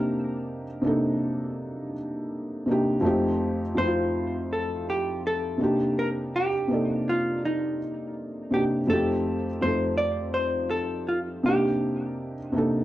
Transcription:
Already playing: C3 A#3 D4 D#4 G4 A#4
0.82 C3 A#3 D4
0.86 D#4 A4
2.66 C3 A#3 D4
2.70 D#4 G4
3.01 F2 A3 C4
3.05 D#4 G4
3.75 F2 A3 C4 C5
3.79 D#4 E4
3.87 F4
4.53 A4
4.90 G4
5.27 A4
5.57 C3 A#3 D4
5.62 D#4 G4
5.99 A#4
6.36 G4
6.68 C3 A#3 D5
6.73 D#4 A4
7.09 F4
7.45 D#4
8.51 C3 A#3 D4 G4
8.55 D#4 G4
8.87 F2 A3 C4 A4
8.91 D#4 G4
9.61 F2 A3 C4 C5
9.65 D#4 A4
9.98 D5
10.34 C5
10.70 A4
11.09 F4
11.43 C3 A#3 D4 G4
11.47 D#4 G4
12.53 C3 A#3 D4
12.57 D#4 A4

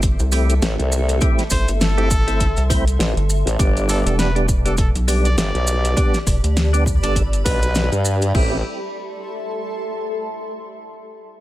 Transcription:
Already playing: G1 G4 A4 D5 E5 A5
0.02 kick, closed hi-hat, maracas
0.19 C2, closed hi-hat, maracas
0.32 A3 C4 E4 G4, cross-stick, open hi-hat, maracas
0.50 closed hi-hat, maracas
0.62 A1, snare, closed hi-hat, maracas
0.79 C2, closed hi-hat
0.92 maracas
0.99 C6
1.09 closed hi-hat, maracas
1.21 A3 C4 E4 G4, kick, closed hi-hat, maracas
1.39 snare, closed hi-hat, maracas
1.50 G1 C5, kick, cross-stick, open hi-hat, maracas
1.68 G1, closed hi-hat, maracas
1.81 A4, snare, closed hi-hat, maracas
1.98 A3 C4 E4 G4, closed hi-hat
2.11 kick, maracas
2.27 A3 C4 E4 A4, closed hi-hat, maracas
2.40 kick, closed hi-hat, maracas
2.57 C2, closed hi-hat, maracas
2.70 A3 C4 E4 C5, kick, open hi-hat, maracas
2.88 closed hi-hat, maracas
2.99 A1, snare, closed hi-hat, maracas
3.17 G1, closed hi-hat
3.30 maracas
3.46 A1, closed hi-hat, maracas
3.58 G1 G3 B3 D4 G4, kick, closed hi-hat, maracas
3.77 closed hi-hat, maracas
3.89 A4, cross-stick, open hi-hat, maracas
4.06 E1 A4, closed hi-hat, maracas
4.19 B4, snare, closed hi-hat, maracas
4.36 G3 B3 D4 G4, closed hi-hat
4.40 D5
4.48 kick, maracas
4.65 G3 B3 D4 G4 A4, closed hi-hat, maracas
4.77 A4, kick, closed hi-hat, maracas
4.95 B1, closed hi-hat, maracas
5.08 G3 B3 D4 G4, cross-stick, open hi-hat, maracas
5.25 D5, closed hi-hat, maracas
5.37 G1 D5, snare, closed hi-hat, maracas
5.54 B1, closed hi-hat
5.67 maracas
5.74 B5
5.85 closed hi-hat, maracas
5.97 G3 B3 D4 G4, kick, closed hi-hat, maracas
6.14 snare, closed hi-hat, maracas
6.27 E1, kick, cross-stick, open hi-hat, maracas
6.44 D2, closed hi-hat, maracas
6.57 snare, closed hi-hat, maracas
6.73 G3 B3 D4 G4, closed hi-hat, maracas
6.86 kick, maracas
7.03 G1 G3 B3 D4 A4 D5, closed hi-hat, maracas
7.16 kick, closed hi-hat, maracas
7.33 closed hi-hat, maracas
7.45 B1 G3 B3 D4 B4, kick, open hi-hat, maracas
7.62 closed hi-hat, maracas
7.75 snare, closed hi-hat, maracas
7.92 G2, closed hi-hat, maracas
8.05 maracas
8.22 closed hi-hat, maracas
8.35 A1 A3 C4 E4 G4 A4, kick, crash
8.45 E5
8.54 A5
8.62 C6

